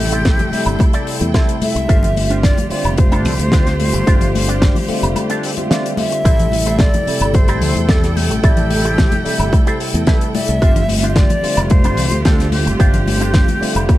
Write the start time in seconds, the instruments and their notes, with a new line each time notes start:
Already playing: fingered electric bass A1, tine electric piano C3 G3 A3 E4, flute G4, string section A4 G5 C6
0.12 clean electric guitar E4 G4 A4 C5, closed hi-hat
0.25 kick, snare, closed hi-hat
0.39 closed hi-hat, high conga, low conga
0.51 tine electric piano C3 G3 A3 E4, muted fingered electric bass stroke, open hi-hat
0.66 fingered electric bass G1, muted clean electric guitar stroke, closed hi-hat, high woodblock
0.79 muted clean electric guitar stroke, kick, closed hi-hat, high conga, high woodblock
0.93 clean electric guitar E4 G4 A4 D5, closed hi-hat
1.07 open hi-hat
1.21 fingered electric bass E2, closed hi-hat, high conga
1.34 tine electric piano C3 G3 A3 E4, clean electric guitar E4 G4 A4 C5, kick, snare, closed hi-hat
1.49 closed hi-hat
1.62 flute E5, muted fingered electric bass stroke, open hi-hat, high conga
1.75 fingered electric bass C2, muted clean electric guitar stroke, closed hi-hat
1.88 fingered electric bass G1, tine electric piano D3 G3 A3 C4 F4, clean electric guitar D4 F4 G4 C5, string section F4 G4, kick, closed hi-hat
2.03 closed hi-hat, low conga
2.16 open hi-hat, high conga
2.30 clean electric guitar D4 F4 G4 C5, closed hi-hat
2.43 flute D5, kick, snare, closed hi-hat
2.57 closed hi-hat, high conga, low conga
2.70 tine electric piano D3 G3 A3 C4 F4, flute D5, muted fingered electric bass stroke, open hi-hat
2.84 fingered electric bass F1, muted clean electric guitar stroke, closed hi-hat, high woodblock
2.97 flute C5, muted clean electric guitar stroke, kick, closed hi-hat, high conga
3.12 clean electric guitar D4 F4 G4 A4, closed hi-hat, high woodblock
3.25 fingered electric bass C2, open hi-hat, low conga
3.39 fingered electric bass D2, closed hi-hat, high conga
3.52 tine electric piano D3 G3 A3 C4 F4, clean electric guitar D4 F4 G4 C5, kick, snare, closed hi-hat
3.66 snare, closed hi-hat
3.80 open hi-hat, high conga
3.93 fingered electric bass G1, muted clean electric guitar stroke, closed hi-hat
4.06 fingered electric bass G1, tine electric piano D3 G3 A3 C4 F4, clean electric guitar D4 F4 G4 C5, kick, closed hi-hat
4.21 closed hi-hat, low conga
4.35 open hi-hat, high conga
4.48 clean electric guitar D4 F4 G4 D5, closed hi-hat
4.62 kick, snare, closed hi-hat
4.75 open hi-hat, high conga, low conga
4.88 tine electric piano D3 G3 A3 C4 F4, muted fingered electric bass stroke, open hi-hat
5.02 fingered electric bass F1, muted clean electric guitar stroke, closed hi-hat, high woodblock
5.16 muted clean electric guitar stroke, closed hi-hat, high conga, high woodblock
5.30 clean electric guitar D4 F4 G4 A4, closed hi-hat
5.43 open hi-hat
5.57 tine electric piano D3 G3 A3 C4 F4, closed hi-hat, high conga
5.70 tine electric piano D3 G3 A3 C4 F4, clean electric guitar D4 F4 G4 D5, snare, closed hi-hat
5.86 closed hi-hat
5.97 flute E5, open hi-hat, high conga
6.12 muted clean electric guitar stroke, closed hi-hat
6.25 fingered electric bass A1, tine electric piano C3 G3 A3 E4, clean electric guitar E4 G4 A4 C5, string section A4 G5, kick, closed hi-hat
6.39 closed hi-hat, low conga
6.52 open hi-hat, high conga
6.66 clean electric guitar E4 G4 A4 C5, closed hi-hat
6.79 flute D5, kick, snare, closed hi-hat
6.94 closed hi-hat, high conga, low conga
7.06 tine electric piano C3 G3 A3 E4, muted fingered electric bass stroke, open hi-hat
7.21 fingered electric bass G1, muted clean electric guitar stroke, closed hi-hat, high woodblock
7.34 flute C5, muted clean electric guitar stroke, kick, closed hi-hat, high conga
7.48 clean electric guitar E4 G4 A4 C5, closed hi-hat, high woodblock
7.62 fingered electric bass D2, open hi-hat, low conga
7.75 fingered electric bass E2, closed hi-hat, high conga
7.88 tine electric piano C3 G3 A3 E4, clean electric guitar E4 G4 A4 D5, flute A4, kick, snare, closed hi-hat
8.03 snare, closed hi-hat
8.16 flute G4, open hi-hat, high conga
8.30 fingered electric bass A1, muted clean electric guitar stroke, closed hi-hat
8.42 fingered electric bass A1, tine electric piano C3 G3 A3 E4, clean electric guitar E4 G4 A4 D5, flute G4, kick, closed hi-hat
8.57 closed hi-hat, low conga
8.70 open hi-hat, high conga
8.85 clean electric guitar E4 G4 A4 C5, closed hi-hat
8.98 kick, snare, closed hi-hat
9.12 closed hi-hat, high conga, low conga
9.24 tine electric piano C3 G3 A3 E4, muted fingered electric bass stroke, open hi-hat
9.39 fingered electric bass G1, muted clean electric guitar stroke, closed hi-hat, high woodblock
9.52 muted clean electric guitar stroke, kick, closed hi-hat, high conga, high woodblock
9.67 clean electric guitar E4 G4 A4 C5, closed hi-hat
9.80 open hi-hat
9.94 fingered electric bass E2, closed hi-hat, high conga
10.07 tine electric piano C3 G3 A3 E4, clean electric guitar E4 G4 A4 B4 A5, kick, snare, closed hi-hat
10.21 closed hi-hat
10.35 clean electric guitar D5, flute E5, muted fingered electric bass stroke, open hi-hat, high conga
10.48 fingered electric bass C2, muted clean electric guitar stroke, closed hi-hat
10.61 fingered electric bass G1, tine electric piano D3 G3 A3 C4 F4, clean electric guitar D4 F4 G4 C5, string section F4 G4, kick, closed hi-hat
10.76 closed hi-hat, low conga
10.89 open hi-hat, high conga
11.03 clean electric guitar D4 F4 G4 C5, closed hi-hat
11.10 flute E5
11.16 flute D5, kick, snare, closed hi-hat
11.30 closed hi-hat, high conga, low conga
11.42 tine electric piano D3 G3 A3 C4 F4, muted fingered electric bass stroke, open hi-hat
11.57 fingered electric bass F1, muted clean electric guitar stroke, closed hi-hat, high woodblock
11.70 flute C5, muted clean electric guitar stroke, kick, closed hi-hat, high conga
11.84 clean electric guitar D4 F4 G4 C5, closed hi-hat, high woodblock
11.97 fingered electric bass C2, open hi-hat, low conga
12.11 fingered electric bass D2, closed hi-hat, high conga
12.25 tine electric piano D3 G3 A3 C4 F4, clean electric guitar D4 F4 G4 C5, flute A4, kick, snare, closed hi-hat
12.40 snare, closed hi-hat
12.52 flute G4, open hi-hat, high conga
12.66 fingered electric bass G1, muted clean electric guitar stroke, closed hi-hat
12.79 fingered electric bass G1, tine electric piano D3 G3 A3 C4 F4, clean electric guitar D4 F4 G4 C5, flute G4, kick, closed hi-hat
12.94 closed hi-hat, low conga
13.07 open hi-hat, high conga
13.20 clean electric guitar D4 F4 G4 C5, closed hi-hat
13.34 kick, snare, closed hi-hat
13.48 closed hi-hat, high conga, low conga
13.60 tine electric piano D3 G3 A3 C4 F4, muted fingered electric bass stroke, open hi-hat
13.75 fingered electric bass F1, muted clean electric guitar stroke, closed hi-hat, high woodblock
13.88 muted clean electric guitar stroke, kick, closed hi-hat, high conga, high woodblock